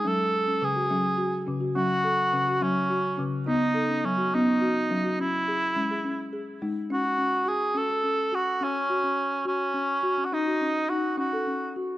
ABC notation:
X:1
M:6/8
L:1/16
Q:3/8=70
K:none
V:1 name="Cor anglais"
A4 ^G6 z2 | ^F6 ^C4- C/2 z3/2 | ^D4 ^C2 D6 | E8 z4 |
^F4 ^G2 A4 F2 | ^C6 C4- C3/2 ^F/2 | ^D4 ^F2 F4 z2 |]
V:2 name="Marimba"
^C2 A C2 ^F C2 F2 C F | ^C2 A2 C ^F C2 F2 C2 | ^D2 A ^C2 ^F C2 F2 C F | ^C2 ^G2 C G C2 G2 ^D2 |
^C ^F C2 F2 C A C2 F2 | ^C2 ^F C2 z F2 C2 F C | ^D ^F ^C2 D2 C A C2 F2 |]
V:3 name="Marimba" clef=bass
^F,4 ^C,2 F,4 C,2 | ^F,4 ^C,2 F,4 C,2 | B,4 ^F,2 B,4 F,2 | z4 ^G,2 z4 G,2 |
z12 | z12 | z12 |]